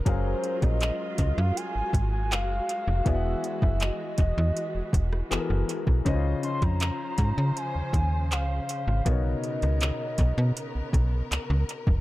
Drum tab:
HH |x-xxx-x-x-x-x-x-|x-x-x-x-x-x-x-x-|x-xxx-x-x-x-x-x-|x-xxx-x-x-x-x-x-|
CP |----x-------x---|----x-------x---|----x-------x---|----x-------x---|
SD |---r------------|---r-------r----|---r------------|---r------------|
BD |o--o--o---o-----|o--o--o---o----o|o--o--o---o-----|o-----o---o----o|